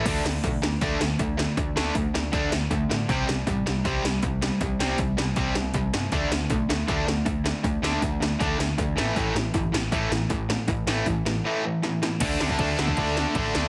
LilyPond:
<<
  \new Staff \with { instrumentName = "Distorted electric guitar" } { \time 4/4 \key a \mixolydian \tempo 4 = 158 r1 | r1 | r1 | r1 |
r1 | r1 | r1 | r1 |
<d a d'>4. <d a d'>2~ <d a d'>8 | }
  \new Staff \with { instrumentName = "Distorted electric guitar" } { \clef bass \time 4/4 \key a \mixolydian <d a d'>8 <d a>8 <d a>8 <d a>8 <d a d'>8 <d a>8 <d a>8 <d a>8 | <d a>8 <d a d'>8 <d a>8 <d a>8 <d a d'>8 <d a>8 <d a>8 <d a>8 | <c g c'>8 <c g>8 <c g>8 <c g>8 <c g c'>8 <c g>8 <c g>8 <c g>8 | <c g>8 <c g c'>8 <c g>8 <c g>8 <c g c'>8 <c g>8 <c g>8 <c g>8 |
<d a d'>8 <d a>8 <d a>8 <d a>8 <d a d'>8 <d a>8 <d a>8 <d a>8 | <d a>8 <d a d'>8 <d a>8 <d a>8 <d a d'>8 <d a>8 <d a>8 <a, e a>8 | <a, e a>8 <a, e>8 <a, e>8 <a, e>8 <a, e a>8 <a, e>8 <a, e>8 <a, e>8 | <a, e>8 <a, e a>8 <a, e>8 <a, e>8 <a, e a>8 <a, e>8 <a, e>8 <a, e>8 |
<d a d'>8 <d a d'>8 <d a d'>8 <d a d'>8 <d a d'>8 <d a d'>8 <d a d'>8 <d a d'>8 | }
  \new Staff \with { instrumentName = "Distorted electric guitar" } { \clef bass \time 4/4 \key a \mixolydian <d a d'>8 <d a>8 <d a>8 <d a>8 <d a d'>8 <d a>8 <d a>8 <d a>8 | <d a>8 <d a d'>8 <d a>8 <d a>8 <d a d'>8 <d a>8 <d a>8 <d a>8 | <c g c'>8 <c g>8 <c g>8 <c g>8 <c g c'>8 <c g>8 <c g>8 <c g>8 | <c g>8 <c g c'>8 <c g>8 <c g>8 <c g c'>8 <c g>8 <c g>8 <c g>8 |
<d a d'>8 <d a>8 <d a>8 <d a>8 <d a d'>8 <d a>8 <d a>8 <d a>8 | <d a>8 <d a d'>8 <d a>8 <d a>8 <d a d'>8 <d a>8 <d a>8 <a, e a>8 | <a, e a>8 <a, e>8 <a, e>8 <a, e>8 <a, e a>8 <a, e>8 <a, e>8 <a, e>8 | <a, e>8 <a, e a>8 <a, e>8 <a, e>8 <a, e a>8 <a, e>8 <a, e>8 <a, e>8 |
<d a d'>8 <d a d'>8 <d a d'>8 <d a d'>8 <d a d'>8 <d a d'>8 <d a d'>8 <d a d'>8 | }
  \new Staff \with { instrumentName = "Picked electric bass" } { \clef bass \time 4/4 \key a \mixolydian d,8 d,8 b,,8 d,8 d,8 d,8 d,4 | d,8 d,8 d,8 d,8 d,8 d,8 d,8 a,8 | c,8 c,8 a,,8 c,8 c,8 c,8 c,4 | c,8 c,8 c,8 c,8 c,8 c,8 c,8 g,8 |
d,8 d,8 b,,8 d,8 d,8 d,8 d,4 | d,8 d,8 d,8 d,8 d,8 d,8 d,8 a,,8 | a,,8 a,,8 g,,8 a,,8 a,,8 a,,8 a,,4 | a,,8 a,,8 a,,8 a,,8 r2 |
d,8 d,8 d,8 d,8 d,4 a,,8 d,8 | }
  \new DrumStaff \with { instrumentName = "Drums" } \drummode { \time 4/4 <cymc hho bd>8 sn8 <hho bd>8 sn8 <hho bd>8 sn8 <hho bd>8 sn8 | <hho bd>8 sn8 <hho bd>8 sn8 <hho bd>8 sn8 <hho bd>8 sn8 | <hho bd>8 sn8 <hho bd>8 sn8 <hho bd>8 sn8 <hho bd>8 sn8 | <hho bd>8 sn8 <hho bd>8 sn8 <hho bd>8 sn8 <hho bd>8 sn8 |
<hho bd>8 sn8 <hho bd>8 sn8 <hho bd>8 sn8 <hho bd>8 sn8 | <hho bd>8 sn8 <hho bd>8 sn8 <hho bd>8 sn8 <hho bd>8 sn8 | <hho bd>8 sn8 <hho bd>8 sn8 <hho bd>8 sn8 <hho bd>8 sn8 | <hho bd>8 sn8 <hho bd>8 sn8 r4 sn8 sn8 |
<cymc bd cymr>8 sn16 bd16 <bd cymr>8 sn16 bd16 <bd cymr>8 sn8 <bd cymr>8 sn8 | }
>>